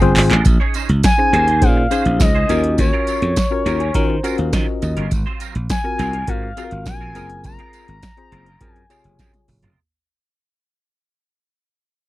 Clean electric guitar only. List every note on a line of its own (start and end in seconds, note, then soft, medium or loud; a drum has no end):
0.02 muted clean electric guitar stroke soft
0.17 muted clean electric guitar stroke soft
0.31 0.45 G#3 medium
0.31 0.46 C4 medium
0.31 0.46 F4 medium
0.31 0.46 A#4 medium
0.46 muted clean electric guitar stroke medium
0.60 0.73 C#4 medium
0.60 0.74 D#4 medium
0.60 0.74 G#4 medium
0.60 0.75 C#5 medium
0.75 0.90 C#4 medium
0.75 0.89 D#4 medium
0.75 0.88 G#4 medium
0.75 0.88 C5 medium
0.89 muted clean electric guitar stroke medium
1.04 muted clean electric guitar stroke soft
1.19 muted clean electric guitar stroke medium
1.33 1.47 C#4 medium
1.33 1.47 D#4 medium
1.33 1.47 G#4 medium
1.33 1.46 C5 loud
1.47 1.61 C#4 medium
1.47 1.61 D#4 medium
1.47 1.61 G#4 medium
1.47 1.62 C5 medium
1.62 muted clean electric guitar stroke soft
1.76 muted clean electric guitar stroke soft
1.91 2.10 C#4 medium
1.91 2.05 D#4 medium
1.91 2.05 G#4 loud
1.91 2.04 C5 medium
2.06 muted clean electric guitar stroke soft
2.20 muted clean electric guitar stroke soft
2.35 2.48 C#4 medium
2.35 2.49 D#4 medium
2.35 2.49 G#4 medium
2.35 2.50 C5 medium
2.49 2.69 F#3 medium
2.49 2.63 C#4 loud
2.49 2.63 F4 medium
2.49 2.62 A#4 loud
2.64 muted clean electric guitar stroke medium
2.78 muted clean electric guitar stroke soft
2.93 3.06 F#3 medium
2.93 3.06 C#4 medium
2.93 3.07 F4 medium
2.93 3.07 A#4 medium
3.07 3.23 F#3 medium
3.07 3.21 C#4 medium
3.07 3.21 F4 medium
3.07 3.21 A#4 medium
3.22 muted clean electric guitar stroke soft
3.36 muted clean electric guitar stroke soft
3.51 muted clean electric guitar stroke soft
3.65 3.80 F#3 medium
3.65 3.79 C#4 medium
3.65 3.79 F4 medium
3.65 3.79 A#4 loud
3.80 3.93 F#3 medium
3.80 3.94 C#4 medium
3.80 3.94 F4 medium
3.80 3.94 A#4 medium
3.95 muted clean electric guitar stroke soft
4.09 muted clean electric guitar stroke soft
4.24 4.43 F#3 medium
4.24 4.38 C#4 medium
4.24 4.37 F4 loud
4.24 4.37 A#4 loud
4.38 muted clean electric guitar stroke soft
4.53 4.72 F#3 medium
4.53 4.67 C#4 medium
4.53 4.67 F4 medium
4.53 4.66 A#4 medium
4.68 muted clean electric guitar stroke soft
4.82 muted clean electric guitar stroke medium
4.97 5.10 F#3 medium
4.97 5.11 C#4 medium
4.97 5.10 F4 medium
4.97 5.11 A#4 medium
5.26 5.39 F#3 medium
5.26 5.39 C4 medium
5.26 5.40 F4 medium
5.26 5.41 C5 medium
5.40 5.56 F#3 medium
5.40 5.54 C4 medium
5.40 5.54 F4 medium
5.40 5.54 A#4 medium
5.55 muted clean electric guitar stroke soft
5.70 muted clean electric guitar stroke soft
5.84 muted clean electric guitar stroke medium
5.99 6.13 F#3 medium
5.99 6.13 C4 medium
5.99 6.12 F4 medium
5.99 6.12 A#4 medium
6.13 6.27 F#3 medium
6.13 6.27 C4 medium
6.13 6.27 F4 medium
6.13 6.27 A#4 medium
6.28 muted clean electric guitar stroke soft
6.42 muted clean electric guitar stroke soft
6.57 6.76 F#3 medium
6.57 6.71 C4 medium
6.57 6.71 F4 medium
6.57 6.70 A#4 medium
6.72 muted clean electric guitar stroke soft
6.86 muted clean electric guitar stroke soft
7.01 7.15 F#3 medium
7.01 7.14 C4 medium
7.01 7.14 F4 medium
7.01 7.15 A#4 medium
7.15 7.35 G#3 loud
7.15 7.29 C4 loud
7.15 7.29 F4 loud
7.15 7.29 A#4 loud
7.30 muted clean electric guitar stroke soft
7.44 muted clean electric guitar stroke soft
7.59 7.72 G#3 medium
7.59 7.72 C4 medium
7.59 7.73 F4 medium
7.59 7.73 A#4 medium
7.73 7.89 G#3 medium
7.73 7.87 C4 medium
7.73 7.87 F4 medium
7.73 7.87 A#4 medium
7.88 muted clean electric guitar stroke soft
8.03 muted clean electric guitar stroke medium
8.17 muted clean electric guitar stroke soft
8.32 8.46 G#3 medium
8.32 8.46 C4 medium
8.32 8.46 F4 medium
8.32 8.45 A#4 medium
8.46 8.60 G#3 medium
8.46 8.60 C4 medium
8.46 8.60 F4 medium
8.46 8.61 A#4 medium
8.61 muted clean electric guitar stroke soft
8.76 muted clean electric guitar stroke soft
8.90 9.10 G#3 medium
8.90 9.04 C4 medium
8.90 9.04 F4 medium
8.90 9.03 A#4 medium
9.05 muted clean electric guitar stroke soft
9.19 9.39 G#3 medium
9.19 9.33 C4 medium
9.19 9.33 F4 medium
9.19 9.33 A#4 medium
9.34 muted clean electric guitar stroke soft
9.48 muted clean electric guitar stroke soft
9.63 9.79 G#3 medium
9.63 9.78 C4 medium
9.63 9.78 F4 medium
9.63 9.78 A#4 medium